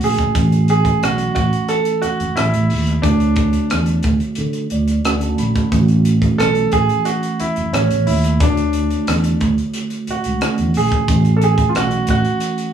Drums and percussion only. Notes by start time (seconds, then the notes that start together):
0.01 open hi-hat
0.18 kick, cross-stick, closed hi-hat
0.35 kick, closed hi-hat
0.52 closed hi-hat
0.68 closed hi-hat
0.85 kick, closed hi-hat
1.03 cross-stick, closed hi-hat
1.18 closed hi-hat
1.36 kick, closed hi-hat
1.53 closed hi-hat
1.69 closed hi-hat
1.85 closed hi-hat
2.02 closed hi-hat
2.20 closed hi-hat
2.37 cross-stick, closed hi-hat
2.54 closed hi-hat
2.70 open hi-hat
2.87 cross-stick, closed hi-hat
3.03 kick, closed hi-hat
3.20 closed hi-hat
3.36 kick, closed hi-hat
3.53 closed hi-hat
3.70 cross-stick, closed hi-hat
3.86 closed hi-hat
4.03 kick, closed hi-hat
4.20 closed hi-hat
4.35 closed hi-hat
4.53 closed hi-hat
4.70 closed hi-hat
4.88 closed hi-hat
5.05 cross-stick, closed hi-hat
5.21 closed hi-hat
5.38 closed hi-hat
5.55 kick, cross-stick, closed hi-hat
5.72 kick, closed hi-hat
5.88 closed hi-hat
6.05 closed hi-hat
6.22 kick, closed hi-hat
6.40 cross-stick, closed hi-hat
6.55 closed hi-hat
6.72 kick, closed hi-hat
6.89 closed hi-hat
7.05 closed hi-hat
7.23 closed hi-hat
7.40 closed hi-hat
7.56 closed hi-hat
7.74 cross-stick, closed hi-hat
7.91 closed hi-hat
8.07 open hi-hat
8.24 cross-stick, closed hi-hat
8.40 kick, closed hi-hat
8.57 closed hi-hat
8.73 closed hi-hat
8.91 closed hi-hat
9.07 cross-stick, closed hi-hat
9.24 closed hi-hat
9.41 kick, closed hi-hat
9.58 closed hi-hat
9.74 closed hi-hat
9.90 closed hi-hat
10.07 closed hi-hat
10.24 closed hi-hat
10.41 cross-stick, closed hi-hat
10.58 closed hi-hat
10.74 open hi-hat
10.91 kick, closed hi-hat
11.08 kick, closed hi-hat
11.25 closed hi-hat
11.42 closed hi-hat
11.58 kick, closed hi-hat
11.75 cross-stick, closed hi-hat
11.91 closed hi-hat
12.07 kick, closed hi-hat
12.25 closed hi-hat
12.40 closed hi-hat
12.58 closed hi-hat